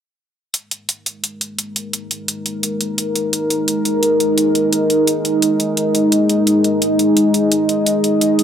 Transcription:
0.54 G#3 D#4 A#4, closed hi-hat
0.71 closed hi-hat
0.89 closed hi-hat
1.06 closed hi-hat
1.24 closed hi-hat
1.41 closed hi-hat
1.59 closed hi-hat
1.76 closed hi-hat
1.93 closed hi-hat
2.11 closed hi-hat
2.28 closed hi-hat
2.46 closed hi-hat
2.63 closed hi-hat
2.81 closed hi-hat
2.98 closed hi-hat
3.16 closed hi-hat
3.33 closed hi-hat
3.50 closed hi-hat
3.68 closed hi-hat
3.85 closed hi-hat
4.03 closed hi-hat
4.20 closed hi-hat
4.38 closed hi-hat
4.55 closed hi-hat
4.73 closed hi-hat
4.90 closed hi-hat
5.07 closed hi-hat
5.25 closed hi-hat
5.42 closed hi-hat
5.60 closed hi-hat
5.77 closed hi-hat
5.95 closed hi-hat
6.12 D#5, closed hi-hat
6.29 closed hi-hat
6.47 closed hi-hat
6.64 closed hi-hat
6.82 closed hi-hat
6.99 closed hi-hat
7.17 closed hi-hat
7.34 closed hi-hat
7.52 closed hi-hat
7.69 closed hi-hat
7.86 closed hi-hat
8.04 closed hi-hat
8.21 closed hi-hat
8.39 closed hi-hat

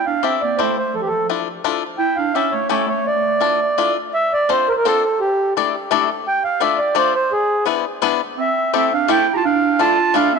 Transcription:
0.06 D4 F5
0.23 C4 E4 G4 A4 E5
0.42 A#3 D5
0.58 A3 C4 E4 G4 A4 C5
0.77 A3 C5
0.95 F3 A4
1.01 E3 G4
1.07 F3 A4
1.29 D4 E4 F4 A4
1.64 D4 E4 F4 A4
1.98 E4 G5
2.16 D4 F5
2.34 C#4 E4 G4 A4 E5
2.51 A3 C#5
2.69 A3 C#4 E4 G4 A4 C#5
2.87 A3 C#5
3.06 A3 D5
3.40 D4 E4 F4 A4
3.78 D4 E4 F4 A4
4.14 E5
4.33 D5
4.49 C4 D4 F4 A4 C5
4.68 A#4 C5
4.77 A#4
4.85 C4 D4 F4 A4 C5
5.04 A4
5.21 G4
5.57 A3 D4 E4 A4 D5
5.91 A3 D4 E4 A4 D5
6.27 G5
6.44 F5
6.60 A3 D4 F4 A4 D5 E5
6.78 D5
6.95 A3 D4 F4 A4 C5 D5
7.15 C5
7.32 G#4
7.66 B3 D4 E4 G#4 B4
8.02 B3 D4 E4 G#4 B4
8.38 C4 E5
8.74 A3 C4 E4 G4 A4 E5
8.93 D4 F5
9.08 A3 C4 E4 G4 A4 G5
9.33 F4 G4 A5 A#5
9.45 D4 F5
9.79 A3 D4 E4 F4 A4 A5
10.14 A3 D4 E4 F4 A4 F5
10.33 C4 E5

